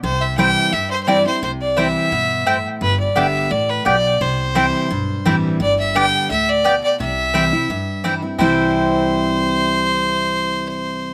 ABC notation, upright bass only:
X:1
M:4/4
L:1/8
Q:1/4=172
K:C
V:1 name="Upright bass" clef=bass
C,,4 G,,4 | C,,4 G,,4 | G,,,2 G,,,2 A,,,2 B,,,2 | C,,4 B,,,2 A,,,2 |
G,,,4 D,,4 | C,,4 G,,4 | C,,8- | C,,8 |]